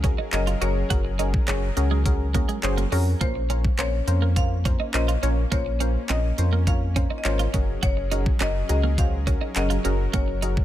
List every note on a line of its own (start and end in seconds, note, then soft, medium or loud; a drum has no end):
0.00 0.14 C#2 medium
0.00 3.17 F#3 medium
0.00 10.65 C#4 medium
0.00 0.24 C#4 medium
0.00 0.24 F#4 medium
0.00 3.17 G#4 medium
0.00 0.25 G#4 medium
0.00 3.17 A#4 medium
0.00 0.25 A#4 medium
0.00 0.35 F5 loud
0.00 kick loud
0.00 closed hi-hat medium
0.04 0.13 C#4 medium
0.18 0.28 D#4 medium
0.32 0.55 F#1 loud
0.32 0.53 C#4 loud
0.32 0.53 F#4 loud
0.32 0.53 G#4 loud
0.32 0.53 A#4 loud
0.32 0.60 D#5 medium
0.32 muted clean electric guitar stroke soft
0.32 clap loud
0.32 closed hi-hat loud
0.47 0.57 F4 medium
0.47 closed hi-hat medium
0.61 0.84 F#1 medium
0.61 0.82 C#4 loud
0.61 0.71 C#4 medium
0.61 0.82 F#4 loud
0.61 0.82 G#4 medium
0.61 0.82 A#4 loud
0.61 2.31 C#5 medium
0.61 closed hi-hat medium
0.90 1.36 F#1 loud
0.90 1.11 C#4 loud
0.90 1.11 F#4 medium
0.90 1.00 F#4 medium
0.90 1.11 G#4 loud
0.90 1.11 A#4 loud
0.90 kick loud
0.90 closed hi-hat loud
1.05 muted clean electric guitar stroke soft
1.19 1.40 C#4 medium
1.19 1.29 D#4 medium
1.19 1.40 F#4 medium
1.19 1.40 G#4 medium
1.19 1.40 A#4 medium
1.19 closed hi-hat medium
1.34 kick loud
1.48 1.71 F#1 medium
1.48 1.57 C#4 medium
1.48 1.69 C#4 loud
1.48 1.69 F#4 medium
1.48 1.69 G#4 medium
1.48 1.69 C#5 loud
1.48 clap loud
1.48 closed hi-hat loud
1.77 2.44 C#2 medium
1.77 1.98 C#4 medium
1.77 1.98 F#4 medium
1.77 1.98 G#4 medium
1.77 1.98 A#4 loud
1.77 muted clean electric guitar stroke soft
1.77 closed hi-hat medium
1.91 2.01 G#3 medium
2.06 2.26 C#4 medium
2.06 2.26 F#4 medium
2.06 2.27 G#4 medium
2.06 2.27 A#4 loud
2.06 muted clean electric guitar stroke soft
2.06 kick loud
2.06 closed hi-hat medium
2.34 2.44 A#3 medium
2.34 2.55 C#4 medium
2.34 2.55 F#4 medium
2.34 2.55 G#4 medium
2.34 2.55 A#4 loud
2.34 kick loud
2.34 closed hi-hat medium
2.49 2.58 G#3 medium
2.49 closed hi-hat medium
2.63 2.86 F#1 loud
2.63 2.84 C#4 loud
2.63 2.84 F#4 loud
2.63 2.84 G#4 loud
2.63 2.84 C5 loud
2.63 muted clean electric guitar stroke soft
2.63 clap loud
2.63 closed hi-hat medium
2.78 2.87 A#3 medium
2.78 closed hi-hat medium
2.92 3.15 F2 medium
2.92 3.02 C#4 medium
2.92 3.13 C#4 loud
2.92 3.13 F#4 loud
2.92 3.13 G#4 loud
2.92 3.13 A#4 loud
2.92 open hi-hat medium
3.21 3.66 A#1 loud
3.21 3.30 A#3 medium
3.21 7.50 A#3 medium
3.21 3.42 C#4 loud
3.21 3.42 F4 medium
3.21 3.42 A#4 medium
3.21 3.81 C5 loud
3.21 3.42 C5 loud
3.21 kick loud
3.21 closed hi-hat loud
3.35 muted clean electric guitar stroke soft
3.50 3.71 C#4 medium
3.50 3.59 C#4 medium
3.50 3.71 F4 medium
3.50 3.71 A#4 medium
3.50 3.71 C#5 medium
3.50 closed hi-hat medium
3.65 kick loud
3.78 4.01 A#1 loud
3.78 3.88 C4 medium
3.78 3.99 C#4 medium
3.78 3.99 F4 medium
3.78 4.00 A#4 medium
3.78 4.00 C5 medium
3.78 4.33 C#5 loud
3.78 clap loud
3.78 closed hi-hat loud
4.07 4.75 F2 loud
4.07 4.28 C#4 medium
4.07 4.28 F4 medium
4.07 4.28 A#4 medium
4.07 4.28 C5 medium
4.07 muted clean electric guitar stroke soft
4.07 closed hi-hat medium
4.22 4.32 A#3 medium
4.36 4.57 C#4 medium
4.36 4.57 F4 medium
4.36 4.57 A#4 medium
4.36 4.57 C5 medium
4.36 4.90 F5 loud
4.36 muted clean electric guitar stroke soft
4.36 kick loud
4.36 closed hi-hat medium
4.65 4.86 C#4 medium
4.65 4.75 C#4 medium
4.65 4.86 F4 medium
4.65 4.86 A#4 medium
4.65 4.86 C5 medium
4.65 kick loud
4.65 closed hi-hat medium
4.80 4.89 D#4 medium
4.94 5.17 A#1 loud
4.94 5.15 C#4 loud
4.94 5.15 F4 loud
4.94 5.15 A#4 loud
4.94 5.15 C5 loud
4.94 5.48 D#5 loud
4.94 muted clean electric guitar stroke soft
4.94 clap loud
4.94 closed hi-hat loud
5.08 5.18 F4 medium
5.08 closed hi-hat medium
5.23 5.45 A#1 loud
5.23 5.32 C#4 medium
5.23 5.44 C#4 loud
5.23 5.44 F4 medium
5.23 5.44 A#4 medium
5.23 5.44 C#5 loud
5.23 closed hi-hat medium
5.52 5.97 A#1 loud
5.52 5.61 A#3 medium
5.52 5.72 C#4 loud
5.52 5.73 F4 loud
5.52 5.73 A#4 loud
5.52 5.73 C5 loud
5.52 6.11 C#5 loud
5.52 kick loud
5.52 closed hi-hat loud
5.66 muted clean electric guitar stroke soft
5.80 6.01 C#4 medium
5.80 5.90 C#4 medium
5.80 6.01 F4 medium
5.80 6.01 A#4 medium
5.80 6.02 C5 medium
5.80 closed hi-hat medium
6.09 6.32 A#1 loud
6.09 6.19 C4 medium
6.09 6.30 C#4 medium
6.09 6.30 F4 medium
6.09 6.30 A#4 medium
6.09 6.69 D#5 loud
6.09 6.30 D#5 medium
6.09 clap loud
6.09 closed hi-hat loud
6.38 7.06 F2 medium
6.38 6.59 C#4 medium
6.38 6.59 F4 medium
6.38 6.59 A#4 medium
6.38 6.59 C5 medium
6.38 muted clean electric guitar stroke soft
6.38 closed hi-hat medium
6.53 6.62 A#3 medium
6.67 6.88 C#4 medium
6.67 6.88 F4 medium
6.67 6.88 A#4 medium
6.67 6.88 C#5 medium
6.67 7.14 F5 loud
6.67 muted clean electric guitar stroke soft
6.67 kick loud
6.67 closed hi-hat loud
6.96 7.17 C#4 medium
6.96 7.05 C#4 medium
6.96 7.17 F4 medium
6.96 7.17 A#4 medium
6.96 7.17 C5 medium
6.96 kick loud
6.96 closed hi-hat medium
7.10 7.20 D#4 medium
7.18 7.25 D#5 medium
7.25 7.48 G#1 loud
7.25 7.46 C#4 loud
7.25 7.46 F4 loud
7.25 7.46 A#4 loud
7.25 7.46 C5 loud
7.25 7.65 C#5 medium
7.25 muted clean electric guitar stroke soft
7.25 clap loud
7.25 closed hi-hat loud
7.39 7.49 F4 medium
7.39 closed hi-hat medium
7.54 7.76 F#1 medium
7.54 10.65 F#3 medium
7.54 8.00 C#4 medium
7.54 7.63 C#4 medium
7.54 8.00 F#4 medium
7.54 9.82 G#4 medium
7.54 8.00 G#4 medium
7.54 10.65 A#4 medium
7.54 8.00 A#4 medium
7.54 kick loud
7.54 closed hi-hat medium
7.83 8.28 F#1 loud
7.83 7.92 F#4 medium
7.83 8.42 C#5 loud
7.83 kick loud
7.83 closed hi-hat loud
7.97 muted clean electric guitar stroke soft
8.11 8.32 C#4 medium
8.11 8.21 D#4 medium
8.11 8.32 F#4 medium
8.11 8.32 G#4 medium
8.11 8.32 A#4 medium
8.11 closed hi-hat medium
8.26 kick loud
8.40 8.63 F#1 loud
8.40 8.61 C#4 medium
8.40 8.50 C#4 loud
8.40 8.61 F#4 medium
8.40 8.61 G#4 medium
8.40 8.61 A#4 medium
8.40 8.69 D#5 loud
8.40 clap loud
8.40 closed hi-hat loud
8.69 9.37 C#2 medium
8.69 8.90 C#4 medium
8.69 8.90 F#4 medium
8.69 8.90 G#4 medium
8.69 8.90 A#4 medium
8.69 8.83 D#5 loud
8.69 muted clean electric guitar stroke soft
8.69 closed hi-hat medium
8.83 8.93 A#3 medium
8.98 9.19 C#4 medium
8.98 9.19 F#4 medium
8.98 9.19 G#4 medium
8.98 9.19 C5 medium
8.98 9.58 F5 loud
8.98 muted clean electric guitar stroke soft
8.98 kick loud
8.98 closed hi-hat medium
9.27 9.48 C#4 medium
9.27 9.36 C#4 medium
9.27 9.48 F#4 medium
9.27 9.48 G#4 medium
9.27 9.48 A#4 medium
9.27 kick loud
9.27 closed hi-hat medium
9.41 9.51 D#4 medium
9.56 9.79 F#1 loud
9.56 9.77 C#4 loud
9.56 9.77 F#4 loud
9.56 9.77 G#4 loud
9.56 9.77 A#4 loud
9.56 10.10 D#5 medium
9.56 muted clean electric guitar stroke soft
9.56 clap loud
9.56 closed hi-hat loud
9.70 9.80 F4 medium
9.70 closed hi-hat medium
9.85 10.07 F#1 medium
9.85 9.94 C#4 medium
9.85 10.05 C#4 loud
9.85 10.05 F#4 medium
9.85 10.65 F#4 medium
9.85 10.05 G#4 medium
9.85 10.06 A#4 loud
9.85 closed hi-hat medium
10.13 10.59 F#1 loud
10.13 10.23 A#3 medium
10.13 10.34 C#4 loud
10.13 10.34 F#4 medium
10.13 10.34 G#4 medium
10.13 10.34 A#4 loud
10.13 10.65 C#5 loud
10.13 kick loud
10.13 closed hi-hat loud
10.28 muted clean electric guitar stroke soft
10.42 10.63 C#4 medium
10.42 10.52 D#4 medium
10.42 10.63 F#4 medium
10.42 10.63 G#4 medium
10.42 10.63 A#4 medium
10.42 closed hi-hat medium
10.57 kick loud